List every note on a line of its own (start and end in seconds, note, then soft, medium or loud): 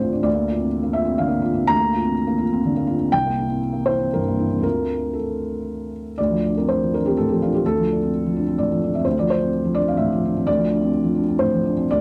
0.00 0.21 D2 soft
0.00 0.28 A2 soft
0.00 0.29 C4 soft
0.00 0.13 D4 soft
0.00 0.29 F4 soft
0.00 0.26 C5 medium
0.00 0.23 D5 medium
0.13 0.25 D4 soft
0.23 1.64 D2 medium
0.23 0.94 D5 medium
0.34 0.54 A#3 soft
0.48 0.67 F4 soft
0.59 0.97 C4 soft
0.83 1.02 A#3 soft
0.93 1.14 F4 soft
0.93 1.18 E5 medium
1.05 1.26 C4 soft
1.18 1.40 D3 soft
1.18 1.69 F5 medium
1.28 1.51 A#3 soft
1.42 1.64 F4 soft
1.55 1.76 C4 soft
1.67 3.08 D2 medium
1.67 3.11 A#5 loud
1.79 2.00 A#3 soft
1.93 2.12 F4 soft
2.03 2.42 C4 soft
2.27 2.47 A#3 soft
2.38 2.58 F4 soft
2.53 2.72 C4 soft
2.65 2.84 D3 soft
2.77 2.96 A#3 soft
2.87 3.07 F4 soft
2.98 3.11 C4 soft
3.12 4.60 C2 medium
3.12 3.86 G5 medium
3.27 3.45 A#3 soft
3.39 3.57 E4 soft
3.49 3.89 C4 soft
3.73 3.94 A#3 soft
3.86 4.07 E4 soft
3.86 4.12 C5 medium
4.00 4.20 C4 soft
4.14 4.34 G2 soft
4.14 4.62 A#4 medium
4.28 4.47 A#3 soft
4.39 4.59 E4 soft
4.51 4.60 C4 soft
4.58 6.11 D2 soft
4.58 6.12 A3 soft
4.58 6.13 C4 soft
4.58 6.13 F4 soft
4.63 5.15 A#4 medium
5.13 5.92 A4 soft
6.18 7.60 D2 soft
6.18 6.55 D5 medium
6.30 6.50 F3 soft
6.46 6.64 D4 soft
6.57 6.95 C4 soft
6.57 6.68 A#4 soft
6.69 6.92 C5 medium
6.83 7.01 F3 soft
6.94 7.13 D4 soft
6.94 7.05 A#4 medium
7.06 7.24 C4 soft
7.06 7.17 G4 medium
7.17 7.37 A2 soft
7.17 7.28 A4 medium
7.29 7.48 F3 soft
7.29 7.40 G4 soft
7.42 7.60 D4 soft
7.42 7.53 F4 medium
7.54 7.72 C4 soft
7.54 7.65 G4 soft
7.66 9.03 D2 medium
7.66 8.59 A4 medium
7.78 7.95 F3 soft
7.92 8.08 D4 soft
8.03 8.39 C4 soft
8.26 8.43 F3 soft
8.36 8.54 D4 soft
8.48 8.66 C4 soft
8.58 8.77 A2 soft
8.58 8.94 D5 medium
8.72 8.90 F3 soft
8.84 9.02 D4 soft
8.95 9.14 C4 soft
8.95 9.06 E5 medium
9.05 10.44 D2 medium
9.05 9.17 C5 medium
9.19 9.37 F3 soft
9.19 9.30 D5 medium
9.30 9.49 D4 soft
9.30 9.77 C5 medium
9.43 9.79 C4 soft
9.65 9.83 F3 soft
9.75 9.94 D4 soft
9.75 9.87 D5 medium
9.88 10.07 C4 soft
9.88 10.00 F5 medium
9.97 10.18 A2 soft
9.97 10.46 E5 medium
10.12 10.31 F3 soft
10.25 10.43 D4 soft
10.36 10.55 C4 soft
10.47 11.84 D2 medium
10.47 11.40 D5 medium
10.57 10.77 F3 soft
10.71 10.89 D4 soft
10.82 11.19 C4 soft
11.04 11.23 F3 soft
11.15 11.34 D4 soft
11.28 11.47 C4 soft
11.39 11.59 A2 soft
11.39 11.87 C5 medium
11.54 11.72 F3 soft
11.65 11.83 D4 soft
11.77 11.88 C4 soft
11.91 12.01 D2 medium
11.91 12.01 D5 medium